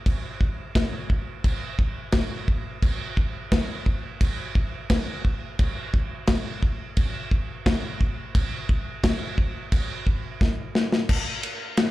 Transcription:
0, 0, Header, 1, 2, 480
1, 0, Start_track
1, 0, Tempo, 688863
1, 44, Time_signature, 4, 2, 24, 8
1, 8298, End_track
2, 0, Start_track
2, 0, Title_t, "Drums"
2, 43, Note_on_c, 9, 36, 111
2, 43, Note_on_c, 9, 49, 60
2, 112, Note_off_c, 9, 36, 0
2, 113, Note_off_c, 9, 49, 0
2, 283, Note_on_c, 9, 36, 86
2, 353, Note_off_c, 9, 36, 0
2, 525, Note_on_c, 9, 36, 114
2, 525, Note_on_c, 9, 49, 56
2, 527, Note_on_c, 9, 38, 118
2, 594, Note_off_c, 9, 36, 0
2, 595, Note_off_c, 9, 49, 0
2, 597, Note_off_c, 9, 38, 0
2, 765, Note_on_c, 9, 36, 91
2, 835, Note_off_c, 9, 36, 0
2, 1005, Note_on_c, 9, 49, 62
2, 1006, Note_on_c, 9, 36, 108
2, 1074, Note_off_c, 9, 49, 0
2, 1075, Note_off_c, 9, 36, 0
2, 1245, Note_on_c, 9, 36, 91
2, 1315, Note_off_c, 9, 36, 0
2, 1479, Note_on_c, 9, 49, 63
2, 1481, Note_on_c, 9, 38, 114
2, 1485, Note_on_c, 9, 36, 120
2, 1549, Note_off_c, 9, 49, 0
2, 1551, Note_off_c, 9, 38, 0
2, 1555, Note_off_c, 9, 36, 0
2, 1728, Note_on_c, 9, 36, 85
2, 1798, Note_off_c, 9, 36, 0
2, 1967, Note_on_c, 9, 49, 67
2, 1968, Note_on_c, 9, 36, 123
2, 2037, Note_off_c, 9, 49, 0
2, 2038, Note_off_c, 9, 36, 0
2, 2210, Note_on_c, 9, 36, 87
2, 2280, Note_off_c, 9, 36, 0
2, 2450, Note_on_c, 9, 49, 66
2, 2452, Note_on_c, 9, 36, 107
2, 2452, Note_on_c, 9, 38, 115
2, 2520, Note_off_c, 9, 49, 0
2, 2521, Note_off_c, 9, 36, 0
2, 2522, Note_off_c, 9, 38, 0
2, 2691, Note_on_c, 9, 36, 84
2, 2761, Note_off_c, 9, 36, 0
2, 2931, Note_on_c, 9, 49, 68
2, 2933, Note_on_c, 9, 36, 115
2, 3001, Note_off_c, 9, 49, 0
2, 3002, Note_off_c, 9, 36, 0
2, 3173, Note_on_c, 9, 36, 93
2, 3243, Note_off_c, 9, 36, 0
2, 3412, Note_on_c, 9, 49, 64
2, 3414, Note_on_c, 9, 36, 116
2, 3414, Note_on_c, 9, 38, 119
2, 3482, Note_off_c, 9, 49, 0
2, 3484, Note_off_c, 9, 36, 0
2, 3484, Note_off_c, 9, 38, 0
2, 3656, Note_on_c, 9, 36, 80
2, 3726, Note_off_c, 9, 36, 0
2, 3895, Note_on_c, 9, 49, 60
2, 3897, Note_on_c, 9, 36, 116
2, 3964, Note_off_c, 9, 49, 0
2, 3967, Note_off_c, 9, 36, 0
2, 4137, Note_on_c, 9, 36, 95
2, 4207, Note_off_c, 9, 36, 0
2, 4371, Note_on_c, 9, 49, 60
2, 4373, Note_on_c, 9, 38, 112
2, 4377, Note_on_c, 9, 36, 114
2, 4441, Note_off_c, 9, 49, 0
2, 4443, Note_off_c, 9, 38, 0
2, 4446, Note_off_c, 9, 36, 0
2, 4617, Note_on_c, 9, 36, 90
2, 4686, Note_off_c, 9, 36, 0
2, 4854, Note_on_c, 9, 49, 61
2, 4858, Note_on_c, 9, 36, 118
2, 4924, Note_off_c, 9, 49, 0
2, 4927, Note_off_c, 9, 36, 0
2, 5096, Note_on_c, 9, 36, 91
2, 5166, Note_off_c, 9, 36, 0
2, 5338, Note_on_c, 9, 36, 121
2, 5338, Note_on_c, 9, 49, 62
2, 5340, Note_on_c, 9, 38, 121
2, 5408, Note_off_c, 9, 36, 0
2, 5408, Note_off_c, 9, 49, 0
2, 5410, Note_off_c, 9, 38, 0
2, 5579, Note_on_c, 9, 36, 89
2, 5649, Note_off_c, 9, 36, 0
2, 5818, Note_on_c, 9, 36, 125
2, 5819, Note_on_c, 9, 49, 64
2, 5888, Note_off_c, 9, 36, 0
2, 5889, Note_off_c, 9, 49, 0
2, 6057, Note_on_c, 9, 36, 96
2, 6127, Note_off_c, 9, 36, 0
2, 6296, Note_on_c, 9, 36, 107
2, 6296, Note_on_c, 9, 49, 67
2, 6298, Note_on_c, 9, 38, 121
2, 6366, Note_off_c, 9, 36, 0
2, 6366, Note_off_c, 9, 49, 0
2, 6368, Note_off_c, 9, 38, 0
2, 6535, Note_on_c, 9, 36, 92
2, 6605, Note_off_c, 9, 36, 0
2, 6772, Note_on_c, 9, 49, 70
2, 6774, Note_on_c, 9, 36, 113
2, 6842, Note_off_c, 9, 49, 0
2, 6844, Note_off_c, 9, 36, 0
2, 7014, Note_on_c, 9, 36, 87
2, 7084, Note_off_c, 9, 36, 0
2, 7254, Note_on_c, 9, 36, 126
2, 7258, Note_on_c, 9, 38, 67
2, 7323, Note_off_c, 9, 36, 0
2, 7327, Note_off_c, 9, 38, 0
2, 7492, Note_on_c, 9, 38, 91
2, 7562, Note_off_c, 9, 38, 0
2, 7612, Note_on_c, 9, 38, 94
2, 7682, Note_off_c, 9, 38, 0
2, 7728, Note_on_c, 9, 57, 125
2, 7729, Note_on_c, 9, 36, 126
2, 7797, Note_off_c, 9, 57, 0
2, 7799, Note_off_c, 9, 36, 0
2, 7966, Note_on_c, 9, 51, 88
2, 8036, Note_off_c, 9, 51, 0
2, 8203, Note_on_c, 9, 51, 101
2, 8205, Note_on_c, 9, 38, 116
2, 8273, Note_off_c, 9, 51, 0
2, 8275, Note_off_c, 9, 38, 0
2, 8298, End_track
0, 0, End_of_file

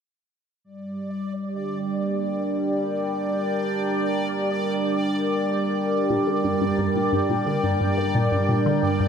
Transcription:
0, 0, Header, 1, 4, 480
1, 0, Start_track
1, 0, Key_signature, -2, "minor"
1, 0, Tempo, 681818
1, 454, Time_signature, 4, 2, 24, 8
1, 6394, End_track
2, 0, Start_track
2, 0, Title_t, "Synth texture"
2, 0, Program_c, 0, 99
2, 453, Note_on_c, 0, 74, 81
2, 6394, Note_off_c, 0, 74, 0
2, 6394, End_track
3, 0, Start_track
3, 0, Title_t, "Analog synth pad"
3, 0, Program_c, 1, 89
3, 454, Note_on_c, 1, 55, 79
3, 1004, Note_on_c, 1, 79, 64
3, 1076, Note_on_c, 1, 62, 72
3, 1324, Note_on_c, 1, 70, 67
3, 6394, Note_off_c, 1, 55, 0
3, 6394, Note_off_c, 1, 62, 0
3, 6394, Note_off_c, 1, 70, 0
3, 6394, Note_off_c, 1, 79, 0
3, 6394, End_track
4, 0, Start_track
4, 0, Title_t, "Synth arpeggio sound"
4, 0, Program_c, 2, 84
4, 4295, Note_on_c, 2, 46, 76
4, 4327, Note_off_c, 2, 46, 0
4, 4415, Note_on_c, 2, 50, 70
4, 4469, Note_off_c, 2, 50, 0
4, 4536, Note_on_c, 2, 43, 68
4, 4589, Note_off_c, 2, 43, 0
4, 4656, Note_on_c, 2, 43, 72
4, 4709, Note_off_c, 2, 43, 0
4, 4775, Note_on_c, 2, 43, 76
4, 4829, Note_off_c, 2, 43, 0
4, 4896, Note_on_c, 2, 46, 70
4, 4976, Note_off_c, 2, 46, 0
4, 5016, Note_on_c, 2, 43, 68
4, 5048, Note_off_c, 2, 43, 0
4, 5136, Note_on_c, 2, 46, 68
4, 5168, Note_off_c, 2, 46, 0
4, 5255, Note_on_c, 2, 50, 76
4, 5309, Note_off_c, 2, 50, 0
4, 5375, Note_on_c, 2, 43, 68
4, 5429, Note_off_c, 2, 43, 0
4, 5496, Note_on_c, 2, 43, 67
4, 5549, Note_off_c, 2, 43, 0
4, 5616, Note_on_c, 2, 43, 71
4, 5669, Note_off_c, 2, 43, 0
4, 5736, Note_on_c, 2, 46, 75
4, 5817, Note_off_c, 2, 46, 0
4, 5856, Note_on_c, 2, 43, 70
4, 5888, Note_off_c, 2, 43, 0
4, 5976, Note_on_c, 2, 46, 69
4, 6008, Note_off_c, 2, 46, 0
4, 6096, Note_on_c, 2, 50, 71
4, 6150, Note_off_c, 2, 50, 0
4, 6216, Note_on_c, 2, 43, 72
4, 6269, Note_off_c, 2, 43, 0
4, 6336, Note_on_c, 2, 43, 70
4, 6389, Note_off_c, 2, 43, 0
4, 6394, End_track
0, 0, End_of_file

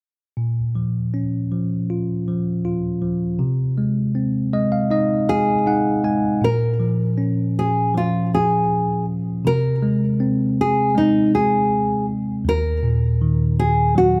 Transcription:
0, 0, Header, 1, 3, 480
1, 0, Start_track
1, 0, Key_signature, -5, "minor"
1, 0, Tempo, 757576
1, 236, Time_signature, 4, 2, 24, 8
1, 5034, Tempo, 750939
1, 9032, End_track
2, 0, Start_track
2, 0, Title_t, "Nylon-string guitar"
2, 0, Program_c, 0, 24
2, 3353, Note_on_c, 0, 68, 76
2, 3807, Note_off_c, 0, 68, 0
2, 4083, Note_on_c, 0, 70, 75
2, 4805, Note_off_c, 0, 70, 0
2, 4808, Note_on_c, 0, 68, 65
2, 5025, Note_off_c, 0, 68, 0
2, 5052, Note_on_c, 0, 65, 61
2, 5268, Note_off_c, 0, 65, 0
2, 5289, Note_on_c, 0, 68, 62
2, 5737, Note_off_c, 0, 68, 0
2, 6007, Note_on_c, 0, 70, 82
2, 6734, Note_off_c, 0, 70, 0
2, 6737, Note_on_c, 0, 68, 72
2, 6951, Note_off_c, 0, 68, 0
2, 6971, Note_on_c, 0, 63, 69
2, 7188, Note_off_c, 0, 63, 0
2, 7209, Note_on_c, 0, 68, 68
2, 7659, Note_off_c, 0, 68, 0
2, 7937, Note_on_c, 0, 70, 87
2, 8619, Note_off_c, 0, 70, 0
2, 8645, Note_on_c, 0, 68, 73
2, 8887, Note_off_c, 0, 68, 0
2, 8890, Note_on_c, 0, 66, 64
2, 9032, Note_off_c, 0, 66, 0
2, 9032, End_track
3, 0, Start_track
3, 0, Title_t, "Tine electric piano"
3, 0, Program_c, 1, 4
3, 234, Note_on_c, 1, 46, 40
3, 373, Control_c, 1, 64, 127
3, 478, Note_on_c, 1, 53, 32
3, 721, Note_on_c, 1, 61, 33
3, 955, Note_off_c, 1, 53, 0
3, 962, Note_on_c, 1, 53, 33
3, 1204, Note_on_c, 1, 65, 36
3, 1435, Note_off_c, 1, 53, 0
3, 1442, Note_on_c, 1, 53, 34
3, 1654, Note_off_c, 1, 61, 0
3, 1671, Note_off_c, 1, 65, 0
3, 1679, Note_on_c, 1, 65, 38
3, 1905, Note_off_c, 1, 53, 0
3, 1913, Note_on_c, 1, 53, 33
3, 2128, Note_off_c, 1, 46, 0
3, 2140, Note_off_c, 1, 65, 0
3, 2145, Note_off_c, 1, 53, 0
3, 2148, Note_on_c, 1, 48, 47
3, 2162, Control_c, 1, 64, 0
3, 2288, Control_c, 1, 64, 127
3, 2393, Note_on_c, 1, 56, 39
3, 2630, Note_on_c, 1, 60, 36
3, 2863, Note_off_c, 1, 56, 0
3, 2871, Note_on_c, 1, 56, 39
3, 2873, Note_on_c, 1, 75, 51
3, 2980, Note_off_c, 1, 75, 0
3, 2990, Note_on_c, 1, 77, 47
3, 3099, Note_off_c, 1, 77, 0
3, 3108, Note_on_c, 1, 63, 40
3, 3113, Note_on_c, 1, 75, 49
3, 3332, Note_off_c, 1, 75, 0
3, 3344, Note_off_c, 1, 56, 0
3, 3352, Note_on_c, 1, 56, 37
3, 3352, Note_on_c, 1, 77, 48
3, 3562, Note_off_c, 1, 60, 0
3, 3573, Note_off_c, 1, 77, 0
3, 3582, Note_off_c, 1, 63, 0
3, 3590, Note_on_c, 1, 63, 44
3, 3594, Note_on_c, 1, 78, 52
3, 3816, Note_off_c, 1, 78, 0
3, 3822, Note_off_c, 1, 56, 0
3, 3830, Note_on_c, 1, 56, 38
3, 3830, Note_on_c, 1, 80, 50
3, 4042, Note_off_c, 1, 48, 0
3, 4054, Note_off_c, 1, 80, 0
3, 4058, Note_off_c, 1, 63, 0
3, 4064, Note_off_c, 1, 56, 0
3, 4064, Note_on_c, 1, 46, 48
3, 4079, Control_c, 1, 64, 0
3, 4171, Control_c, 1, 64, 127
3, 4306, Note_on_c, 1, 53, 41
3, 4547, Note_on_c, 1, 61, 38
3, 5025, Note_off_c, 1, 53, 0
3, 5032, Note_on_c, 1, 53, 41
3, 5487, Note_off_c, 1, 61, 0
3, 5968, Note_off_c, 1, 46, 0
3, 5970, Note_off_c, 1, 53, 0
3, 5994, Note_on_c, 1, 48, 50
3, 6006, Control_c, 1, 64, 0
3, 6121, Control_c, 1, 64, 127
3, 6235, Note_on_c, 1, 56, 43
3, 6476, Note_on_c, 1, 60, 44
3, 6945, Note_off_c, 1, 56, 0
3, 6953, Note_on_c, 1, 56, 47
3, 7412, Note_off_c, 1, 60, 0
3, 7890, Note_off_c, 1, 56, 0
3, 7892, Note_off_c, 1, 48, 0
3, 7912, Note_on_c, 1, 39, 54
3, 7927, Control_c, 1, 64, 0
3, 8027, Control_c, 1, 64, 127
3, 8156, Note_on_c, 1, 46, 46
3, 8403, Note_on_c, 1, 51, 43
3, 8874, Note_on_c, 1, 54, 45
3, 9032, Note_off_c, 1, 39, 0
3, 9032, Note_off_c, 1, 46, 0
3, 9032, Note_off_c, 1, 51, 0
3, 9032, Note_off_c, 1, 54, 0
3, 9032, End_track
0, 0, End_of_file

